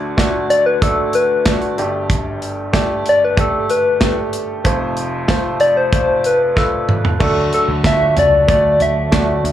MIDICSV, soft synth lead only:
0, 0, Header, 1, 2, 480
1, 0, Start_track
1, 0, Tempo, 638978
1, 1573, Time_signature, 4, 2, 24, 8
1, 7153, End_track
2, 0, Start_track
2, 0, Title_t, "Soft synth lead"
2, 0, Program_c, 0, 80
2, 377, Note_on_c, 0, 74, 95
2, 487, Note_off_c, 0, 74, 0
2, 497, Note_on_c, 0, 71, 85
2, 607, Note_off_c, 0, 71, 0
2, 618, Note_on_c, 0, 69, 88
2, 864, Note_on_c, 0, 71, 84
2, 876, Note_off_c, 0, 69, 0
2, 1339, Note_off_c, 0, 71, 0
2, 2322, Note_on_c, 0, 74, 93
2, 2438, Note_on_c, 0, 71, 86
2, 2449, Note_off_c, 0, 74, 0
2, 2546, Note_off_c, 0, 71, 0
2, 2558, Note_on_c, 0, 69, 85
2, 2783, Note_on_c, 0, 71, 83
2, 2794, Note_off_c, 0, 69, 0
2, 3258, Note_off_c, 0, 71, 0
2, 4211, Note_on_c, 0, 74, 95
2, 4335, Note_on_c, 0, 72, 85
2, 4346, Note_off_c, 0, 74, 0
2, 4451, Note_off_c, 0, 72, 0
2, 4456, Note_on_c, 0, 72, 91
2, 4704, Note_on_c, 0, 71, 78
2, 4715, Note_off_c, 0, 72, 0
2, 4939, Note_on_c, 0, 69, 78
2, 4950, Note_off_c, 0, 71, 0
2, 5297, Note_off_c, 0, 69, 0
2, 5421, Note_on_c, 0, 69, 77
2, 5642, Note_off_c, 0, 69, 0
2, 5666, Note_on_c, 0, 69, 83
2, 5771, Note_off_c, 0, 69, 0
2, 5909, Note_on_c, 0, 76, 105
2, 6126, Note_off_c, 0, 76, 0
2, 6153, Note_on_c, 0, 74, 98
2, 6368, Note_off_c, 0, 74, 0
2, 6383, Note_on_c, 0, 74, 101
2, 6627, Note_on_c, 0, 76, 89
2, 6638, Note_off_c, 0, 74, 0
2, 7102, Note_off_c, 0, 76, 0
2, 7153, End_track
0, 0, End_of_file